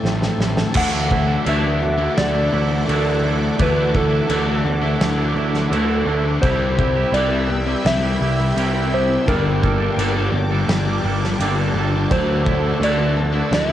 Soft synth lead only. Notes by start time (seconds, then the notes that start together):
0.77 F#5
1.48 E5
2.18 D5
3.62 B4
3.96 A4
6.42 C5
7.14 D5
7.87 E5
8.94 C5
9.28 A#4
12.11 C5
12.84 D5
13.54 E5